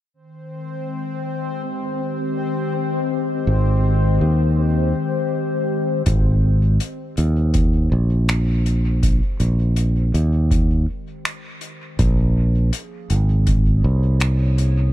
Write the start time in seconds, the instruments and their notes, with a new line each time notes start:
0.14 ambient pad D#3, synth texture C4 C5
0.51 ambient pad G#3 C4
1.22 ambient pad C5
1.31 ambient pad G4
3.47 fingered electric bass G#1
4.21 fingered electric bass D#2
6.06 fingered electric bass G#1, kick, closed hi-hat
6.80 closed hi-hat
7.17 fingered electric bass D#2, closed hi-hat
7.54 kick, closed hi-hat
7.92 fingered electric bass A#1
8.29 finger snap, closed hi-hat
8.66 closed hi-hat
9.03 kick, closed hi-hat
9.40 fingered electric bass A#1, closed hi-hat
9.76 closed hi-hat
10.14 fingered electric bass D#2, closed hi-hat
10.51 kick, closed hi-hat
11.25 finger snap, closed hi-hat
11.61 closed hi-hat
11.99 fingered electric bass A#1, ambient pad F3, kick, closed hi-hat
12.38 ambient pad A#3 C#4 G#4
12.73 closed hi-hat
13.10 fingered electric bass G#1, closed hi-hat
13.34 ambient pad C#5
13.47 kick, closed hi-hat
13.84 fingered electric bass C2
14.20 finger snap, closed hi-hat
14.58 closed hi-hat